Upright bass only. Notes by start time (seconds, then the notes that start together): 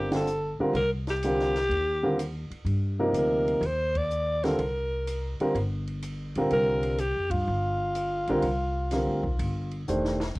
Already playing: G1
0.59 muted upright bass stroke
0.73 C2
1.69 D#2
2.50 muted upright bass stroke
2.65 G2
3.12 D2
3.61 D#2
4.58 C2
5.40 muted upright bass stroke
5.55 G1
6.36 A#1
6.51 C2
7.16 F2
7.30 G2
7.48 G1
8.28 A#1
8.43 C2
9.07 D2
9.23 B1
9.39 G1
9.89 E1
10.35 F1